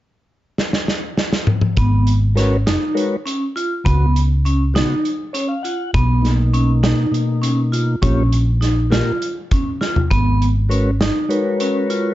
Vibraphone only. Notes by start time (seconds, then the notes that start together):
1.78 B3
2.37 C#4
2.67 D#4
3.26 C#4
3.56 F4
3.85 B3
4.45 C#4
4.75 D#4
5.34 C#4
5.65 F4
5.94 B3
6.53 C#4
6.83 D#4
7.42 C#4
7.72 F4
8.02 C#4
8.61 D#4
8.92 F4
9.51 C#4
9.81 F4
10.10 B3
10.71 C#4
11.01 D#4
11.61 C#4
11.90 F4